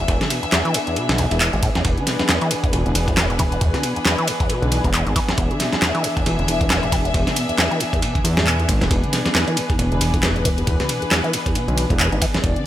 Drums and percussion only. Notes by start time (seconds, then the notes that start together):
0.08 kick, closed hi-hat, ride
0.21 snare, closed hi-hat, ride
0.30 closed hi-hat, ride
0.43 closed hi-hat
0.52 snare, clap, closed hi-hat, ride
0.65 closed hi-hat
0.74 closed hi-hat, ride
0.87 closed hi-hat
0.96 closed hi-hat, ride
1.09 snare, closed hi-hat, ride
1.18 closed hi-hat, ride
1.31 closed hi-hat, ride
1.41 clap, closed hi-hat, ride
1.53 closed hi-hat
1.63 kick, closed hi-hat, ride
1.75 snare, closed hi-hat
1.85 kick, closed hi-hat, ride
1.98 closed hi-hat
2.07 snare, closed hi-hat, ride
2.19 snare, closed hi-hat
2.29 snare, clap, closed hi-hat, ride
2.41 closed hi-hat, ride
2.51 closed hi-hat, ride
2.64 kick, closed hi-hat
2.73 closed hi-hat, ride
2.86 closed hi-hat
2.95 closed hi-hat, ride
3.08 kick, closed hi-hat
3.17 snare, clap, closed hi-hat, ride
3.30 closed hi-hat
3.39 kick, closed hi-hat, ride
3.52 closed hi-hat
3.61 kick, closed hi-hat, ride
3.74 snare, closed hi-hat, ride
3.83 closed hi-hat, ride
3.96 closed hi-hat
4.05 snare, clap, closed hi-hat, ride
4.18 closed hi-hat
4.27 closed hi-hat, ride
4.40 kick, closed hi-hat
4.50 closed hi-hat, ride
4.62 closed hi-hat
4.72 closed hi-hat, ride
4.84 kick, closed hi-hat
4.94 clap, closed hi-hat, ride
5.07 closed hi-hat
5.16 kick, closed hi-hat, ride
5.29 snare, closed hi-hat
5.38 kick, closed hi-hat, ride
5.51 closed hi-hat
5.60 snare, closed hi-hat, ride
5.73 snare, closed hi-hat
5.82 snare, clap, closed hi-hat, ride
5.95 closed hi-hat, ride
6.04 closed hi-hat, ride
6.17 kick, closed hi-hat
6.26 closed hi-hat, ride
6.39 closed hi-hat
6.48 closed hi-hat, ride
6.61 kick, closed hi-hat
6.70 snare, clap, closed hi-hat, ride
6.83 closed hi-hat
6.92 kick, closed hi-hat, ride
7.05 closed hi-hat
7.14 kick, closed hi-hat, ride
7.27 snare, closed hi-hat, ride
7.36 closed hi-hat, ride
7.49 closed hi-hat
7.58 snare, clap, closed hi-hat, ride
7.71 closed hi-hat
7.80 closed hi-hat, ride
7.93 kick, closed hi-hat
8.02 closed hi-hat, ride
8.15 kick, closed hi-hat
8.25 closed hi-hat, ride
8.37 snare, closed hi-hat
8.47 clap, closed hi-hat
8.60 closed hi-hat
8.69 kick, closed hi-hat, ride
8.81 snare, closed hi-hat
8.91 kick, closed hi-hat, ride
9.04 closed hi-hat
9.13 snare, closed hi-hat, ride
9.26 snare, closed hi-hat
9.35 snare, clap, closed hi-hat, ride
9.48 closed hi-hat, ride
9.57 closed hi-hat, ride
9.70 kick, closed hi-hat
9.79 closed hi-hat, ride
9.92 closed hi-hat
10.01 closed hi-hat, ride
10.14 kick, closed hi-hat
10.23 snare, clap, closed hi-hat, ride
10.36 closed hi-hat
10.45 kick, closed hi-hat, ride
10.58 closed hi-hat
10.67 kick, closed hi-hat, ride
10.80 snare, closed hi-hat, ride
10.89 closed hi-hat, ride
11.02 closed hi-hat
11.11 snare, clap, closed hi-hat, ride
11.24 closed hi-hat
11.33 closed hi-hat, ride
11.46 kick, closed hi-hat
11.55 closed hi-hat, ride
11.68 closed hi-hat
11.78 closed hi-hat, ride
11.90 kick, closed hi-hat
12.00 clap, closed hi-hat, ride
12.12 closed hi-hat
12.22 kick, closed hi-hat, ride
12.34 snare, closed hi-hat
12.44 kick, closed hi-hat, ride
12.56 closed hi-hat